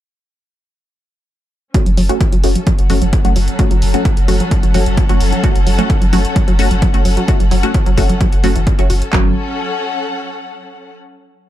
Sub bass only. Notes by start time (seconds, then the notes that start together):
1.86 F#1
1.97 F#1
2.32 F#1
2.44 F#1
2.79 F#1
2.90 F#1
3.02 F#1
3.25 F#1
3.36 F#1
3.71 F#1
3.82 F#1
4.17 F#1
4.28 F#1
4.63 F#1
4.74 F#1
4.86 F#1
5.09 F#1
5.21 F#1
5.56 F#1
5.67 F#1
6.02 F#1
6.13 F#1
6.48 F#1
6.59 F#1
6.71 F#1
6.94 F#1
7.05 F#1
7.40 F#1
7.51 F#1
7.86 F#1
7.98 F#1
8.33 F#1
8.44 F#1
8.56 F#1
8.79 F#1
8.90 F#1
9.13 F#1